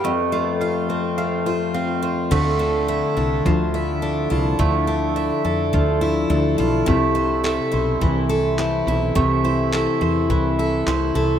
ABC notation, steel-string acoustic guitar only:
X:1
M:4/4
L:1/8
Q:"Swing 16ths" 1/4=105
K:Ddor
V:1 name="Steel-string acoustic guitar"
F,, A, F C A, F C F | D, D E D F, E D E | D, D E D F, E D E | C, E A E E, A E A |
C, E A E E, A E A |]